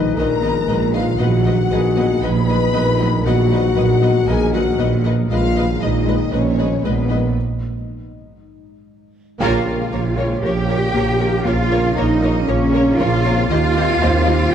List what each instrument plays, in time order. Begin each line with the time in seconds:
Already playing: tuba A#1, double bass section A#1, cello section A#2, trombone section D#3 G#3, ambient pad D#3 G#3 G#4 D#5, french horn section D#4, grand piano G#4 B4, violin section D#5
0.16 double bass section A#1, tuba A#1, cello section A#2, viola section D#3 B4, synth arpeggio sound D#4, french horn section A#4, violin section D#5 A#5
0.43 viola section D#3 B4, synth arpeggio sound B3, violin section D#5
0.68 double bass section A#1, tuba A#1, cello section A#2, viola section D#3 B4, synth arpeggio sound G#3, violin section D#5
0.94 viola section D#3 B4, synth arpeggio sound D#4, french horn section F4, violin section D#5 F5
1.19 double bass section A#1, tuba A#1, cello section A#2, trombone section D#3 D#4, ambient pad F#3 D#4 D#5, viola section F#3 B4, synth arpeggio sound B3, french horn section F#4, violin section D#5 F#5
1.46 viola section F#3 B4, synth arpeggio sound F#4, violin section D#5
1.71 double bass section A#1, tuba A#1, cello section A#2, viola section F#3 B4, grand piano G#4, synth arpeggio sound B4, violin section D#5
1.97 viola section F#3 B4, synth arpeggio sound B3, violin section D#5
2.23 tuba A#1, double bass section A#1, cello section A#2, viola section F#3 B4, synth arpeggio sound F#4, french horn section B4, violin section D#5 B5
2.48 viola section F#3 B4, synth arpeggio sound D#4, violin section D#5
2.73 double bass section A#1, tuba A#1, cello section A#2, viola section F#3 B4, synth arpeggio sound B3, violin section D#5
2.99 viola section F#3 B4, synth arpeggio sound F#4, violin section D#5
3.25 double bass section A#1, tuba A#1, cello section A#2, viola section F#3 B4, synth arpeggio sound B3, french horn section F#4, violin section D#5 F#5
3.51 viola section F#3 B4, synth arpeggio sound F#4, violin section D#5
3.76 double bass section A#1, tuba A#1, cello section A#2, viola section F#3 B4, synth arpeggio sound B4, violin section D#5
4.02 viola section F#3 B4, synth arpeggio sound B3, violin section D#5
4.27 double bass section A#1, tuba A#1, cello section A#2, viola section F#3 B4, synth arpeggio sound F#4, french horn section G#4, grand piano A#4, violin section D#5 G#5
4.53 viola section F#3 B4, synth arpeggio sound D#4, french horn section F#4, violin section D#5 F#5
4.79 double bass section A#1, tuba A#1, cello section A#2, viola section F#3 B4, synth arpeggio sound B3, violin section D#5
5.05 viola section F#3 B4, synth arpeggio sound F#4, violin section D#5
5.30 tuba A#1, double bass section A#1, cello section A#2, trombone section D#3 G#3, synth arpeggio sound G#3, ambient pad G#3, viola section G#3 B4, french horn section F4, violin section D#5 F5
5.56 viola section G#3 B4, synth arpeggio sound D#4, violin section D#5
5.81 tuba A#1, double bass section A#1, cello section A#2, viola section G#3 B4, french horn section D#4, synth arpeggio sound G#4, violin section D#5
6.07 synth arpeggio sound G#3, viola section G#3 B4, violin section D#5
6.32 tuba A#1, double bass section A#1, cello section A#2, viola section G#3 B4, french horn section C#4, synth arpeggio sound D#4, violin section C#5 D#5
6.58 viola section G#3 B4, synth arpeggio sound B3, violin section D#5
6.84 tuba A#1, double bass section A#1, cello section A#2, viola section G#3 B4, synth arpeggio sound G#3, french horn section B3, violin section B4 D#5
7.09 viola section G#3 B4, synth arpeggio sound D#4, violin section D#5
9.38 tuba A#1, double bass section A#1, trombone section C#3 A#3, synth arpeggio sound A#3, viola section A#3 A#4, french horn section A#3, ambient pad A#3 C#4 F4 F5, cello section F4, grand piano G4 G5, violin section C#5 F5
9.65 french horn section G#3, viola section A#3 A#4, synth arpeggio sound A#4, violin section C#5
9.91 tuba A#1, double bass section A#1, viola section A#3 A#4, french horn section A#3, synth arpeggio sound A#4, violin section C#5
10.17 french horn section G#3, synth arpeggio sound A#3, viola section A#3 A#4, grand piano C#5, violin section C#5
10.42 tuba A#1, double bass section A#1, french horn section G3, viola section A#3 A#4, cello section G4, synth arpeggio sound A#4, violin section C#5 G5
10.68 viola section A#3 A#4, synth arpeggio sound A#4, violin section C#5
10.94 tuba A#1, double bass section A#1, french horn section F3, synth arpeggio sound A#3, viola section A#3 A#4, violin section C#5
11.20 french horn section D#3, viola section A#3 A#4, synth arpeggio sound F4, violin section C#5
11.45 tuba A#1, double bass section A#1, french horn section F3, synth arpeggio sound A#3, viola section A#3 A#4, cello section F4, violin section C#5 F5
11.71 viola section A#3 A#4, synth arpeggio sound A#4, violin section C#5
11.96 tuba A#1, double bass section A#1, french horn section G3, viola section A#3 A#4, cello section D#4, synth arpeggio sound A#4, violin section C#5 D#5
12.22 viola section A#3 A#4, synth arpeggio sound A#3, violin section C#5
12.48 tuba A#1, double bass section A#1, french horn section F3, viola section A#3 A#4, cello section C#4, synth arpeggio sound A#4, violin section C#5
12.73 viola section A#3 A#4, french horn section A#3, synth arpeggio sound A#4, violin section C#5
12.98 tuba A#1, double bass section A#1, viola section A#3 A#4, synth arpeggio sound A#3, french horn section C#4, cello section F4, violin section C#5 F5
13.24 viola section A#3 A#4, french horn section C4, synth arpeggio sound F4, violin section C#5
13.49 tuba D#2, double bass section D#2, trombone section A#2 G3, synth arpeggio sound D#3, ambient pad A#3 D#4 G4 D#5, french horn section A#3, viola section A#3 G4, cello section F4, violin section D#5 F5
13.76 viola section A#3 G4, french horn section C4, synth arpeggio sound D#4, violin section D#5
14.01 tuba D#2, double bass section D#2, viola section A#3 G4, french horn section A#3, grand piano C4 C5, synth arpeggio sound D#4, violin section D#5
14.27 synth arpeggio sound D#3, viola section A#3 G4, violin section D#5
14.51 violin section G5